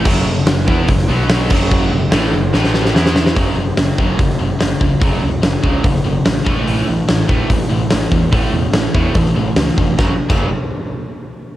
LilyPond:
<<
  \new Staff \with { instrumentName = "Distorted electric guitar" } { \clef bass \time 4/4 \key fis \minor \tempo 4 = 145 <fis, cis fis>8 <fis, cis>8 <fis, cis>8 <e b e'>8 <fis, cis>8 <b, fis b>4 <fis, cis fis>8~ | <fis, cis fis>8 <fis, cis>8 <a, e a>8 <fis, cis>8 <a, e a>4 <e b e'>4 | <fis, cis fis>8 <fis, cis>8 <fis, cis>8 <fis, cis fis>8 <fis, cis>8 <fis, cis>8 <fis, cis>8 <fis, cis>8 | <fis, cis fis>8 <fis, cis>8 <fis, cis>8 <fis, cis fis>8 <fis, cis>8 <fis, cis>8 <fis, cis>8 <a, e a>8 |
<a, e a>8 <a, e>8 <a, e>8 <a, e a>8 <a, e>8 <a, e>8 <a, e>8 <a, e>8 | <a, e a>8 <a, e>8 <a, e>8 <a, e a>8 <a, e>8 <a, e>8 <a, e>8 <a, e>8 | <fis, cis fis>16 r8 <fis, cis fis>8 r2 r8. | }
  \new Staff \with { instrumentName = "Distorted electric guitar" } { \clef bass \time 4/4 \key fis \minor <fis, cis fis>8 <fis, cis>8 <fis, cis>8 <e b e'>8 <fis, cis>8 <b, fis b>4 <fis, cis fis>8~ | <fis, cis fis>8 <fis, cis>8 <a, e a>8 <fis, cis>8 <a, e a>4 <e b e'>4 | r1 | r1 |
r1 | r1 | r1 | }
  \new Staff \with { instrumentName = "Overdriven electric guitar" } { \clef bass \time 4/4 \key fis \minor <fis, cis fis>8 <fis, cis>8 <fis, cis>8 <e b e'>8 <fis, cis>8 <b, fis b>4 <fis, cis fis>8~ | <fis, cis fis>8 <fis, cis>8 <a, e a>8 <fis, cis>8 <a, e a>4 <e b e'>4 | <fis, cis fis>8 <fis, cis>8 <fis, cis>8 <fis, cis fis>8 <fis, cis>8 <fis, cis>8 <fis, cis>8 <fis, cis>8 | <fis, cis fis>8 <fis, cis>8 <fis, cis>8 <fis, cis fis>8 <fis, cis>8 <fis, cis>8 <fis, cis>8 <a, e a>8 |
<a, e a>8 <a, e>8 <a, e>8 <a, e a>8 <a, e>8 <a, e>8 <a, e>8 <a, e>8 | <a, e a>8 <a, e>8 <a, e>8 <a, e a>8 <a, e>8 <a, e>8 <a, e>8 <a, e>8 | <fis, cis fis>16 r8 <fis, cis fis>8 r2 r8. | }
  \new Staff \with { instrumentName = "Picked electric bass" } { \clef bass \time 4/4 \key fis \minor fis,,8 fis,,8 fis,,8 e,8 fis,,8 b,,4 fis,,8~ | fis,,8 fis,,8 a,,8 fis,,8 a,,4 e,4 | fis,,8 fis,,8 fis,,8 fis,,8 fis,,8 fis,,8 fis,,8 cis,8 | fis,,8 cis,8 fis,,8 cis,8 fis,,8 fis,,8 a,,8 a,,8 |
a,,8 a,,8 a,,8 a,,8 a,,8 a,,8 a,,8 e,8 | a,,8 e,8 a,,8 e,8 a,,8 a,,8 cis,8 eis,,8 | fis,,16 r8 fis,,8 r2 r8. | }
  \new DrumStaff \with { instrumentName = "Drums" } \drummode { \time 4/4 <cymc bd>4 <hho sn>8 bd8 <hho bd>16 sn8. <hho sn>8 <cymc bd>8 | bd4 <hho sn>4 sn16 sn16 sn16 sn16 sn16 sn16 sn16 sn16 | <hho bd>4 <hho sn>8 bd8 <hho bd>16 sn8. <hho sn>8 bd8 | <hho bd>4 <hho sn>8 bd8 <hho bd>16 sn8. <hho sn>8 bd8 |
hho4 <hho sn>8 bd8 <hho bd>4 <hho sn>8 bd8 | <hho bd>4 <hho sn>8 bd8 <hho bd>16 sn8. <hho sn>8 bd8 | <bd sn>8. <cymc bd>16 r4 r4 r4 | }
>>